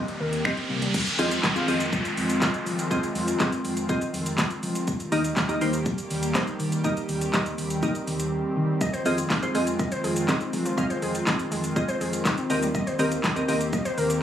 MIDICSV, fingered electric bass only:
0, 0, Header, 1, 2, 480
1, 0, Start_track
1, 0, Key_signature, -4, "minor"
1, 0, Tempo, 491803
1, 920, Time_signature, 4, 2, 24, 8
1, 13887, End_track
2, 0, Start_track
2, 0, Title_t, "Fingered electric bass"
2, 0, Program_c, 0, 33
2, 200, Note_on_c, 0, 39, 94
2, 527, Note_off_c, 0, 39, 0
2, 680, Note_on_c, 0, 36, 91
2, 843, Note_off_c, 0, 36, 0
2, 1161, Note_on_c, 0, 41, 91
2, 1324, Note_off_c, 0, 41, 0
2, 1400, Note_on_c, 0, 41, 91
2, 1564, Note_off_c, 0, 41, 0
2, 1640, Note_on_c, 0, 41, 88
2, 1967, Note_off_c, 0, 41, 0
2, 2119, Note_on_c, 0, 41, 111
2, 2447, Note_off_c, 0, 41, 0
2, 2599, Note_on_c, 0, 53, 93
2, 2927, Note_off_c, 0, 53, 0
2, 3079, Note_on_c, 0, 41, 94
2, 3243, Note_off_c, 0, 41, 0
2, 3319, Note_on_c, 0, 41, 96
2, 3483, Note_off_c, 0, 41, 0
2, 3559, Note_on_c, 0, 41, 88
2, 3887, Note_off_c, 0, 41, 0
2, 4039, Note_on_c, 0, 41, 111
2, 4367, Note_off_c, 0, 41, 0
2, 4519, Note_on_c, 0, 53, 100
2, 4846, Note_off_c, 0, 53, 0
2, 4998, Note_on_c, 0, 39, 93
2, 5163, Note_off_c, 0, 39, 0
2, 5238, Note_on_c, 0, 39, 99
2, 5403, Note_off_c, 0, 39, 0
2, 5478, Note_on_c, 0, 39, 88
2, 5806, Note_off_c, 0, 39, 0
2, 5959, Note_on_c, 0, 39, 110
2, 6287, Note_off_c, 0, 39, 0
2, 6439, Note_on_c, 0, 51, 101
2, 6767, Note_off_c, 0, 51, 0
2, 6919, Note_on_c, 0, 39, 90
2, 7083, Note_off_c, 0, 39, 0
2, 7160, Note_on_c, 0, 39, 94
2, 7324, Note_off_c, 0, 39, 0
2, 7400, Note_on_c, 0, 39, 90
2, 7727, Note_off_c, 0, 39, 0
2, 7880, Note_on_c, 0, 39, 110
2, 8207, Note_off_c, 0, 39, 0
2, 8360, Note_on_c, 0, 51, 92
2, 8687, Note_off_c, 0, 51, 0
2, 8840, Note_on_c, 0, 41, 93
2, 9004, Note_off_c, 0, 41, 0
2, 9080, Note_on_c, 0, 41, 95
2, 9243, Note_off_c, 0, 41, 0
2, 9319, Note_on_c, 0, 41, 91
2, 9647, Note_off_c, 0, 41, 0
2, 9800, Note_on_c, 0, 41, 106
2, 10127, Note_off_c, 0, 41, 0
2, 10280, Note_on_c, 0, 53, 94
2, 10607, Note_off_c, 0, 53, 0
2, 10760, Note_on_c, 0, 41, 94
2, 10924, Note_off_c, 0, 41, 0
2, 11000, Note_on_c, 0, 41, 96
2, 11163, Note_off_c, 0, 41, 0
2, 11240, Note_on_c, 0, 41, 90
2, 11567, Note_off_c, 0, 41, 0
2, 11720, Note_on_c, 0, 41, 107
2, 12047, Note_off_c, 0, 41, 0
2, 12201, Note_on_c, 0, 39, 92
2, 12528, Note_off_c, 0, 39, 0
2, 12681, Note_on_c, 0, 39, 92
2, 12844, Note_off_c, 0, 39, 0
2, 12921, Note_on_c, 0, 39, 98
2, 13084, Note_off_c, 0, 39, 0
2, 13161, Note_on_c, 0, 39, 90
2, 13488, Note_off_c, 0, 39, 0
2, 13641, Note_on_c, 0, 39, 106
2, 13887, Note_off_c, 0, 39, 0
2, 13887, End_track
0, 0, End_of_file